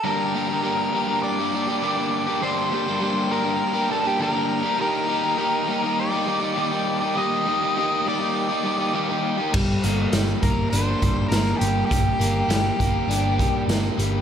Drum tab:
CC |--------|--------|--------|--------|
HH |--------|--------|--------|--------|
SD |--------|--------|--------|--------|
BD |--------|--------|--------|--------|

CC |x-------|--------|
HH |-xxxxxxx|xxxxxxxx|
SD |--o---o-|--o---o-|
BD |o--o-o--|o--o-o--|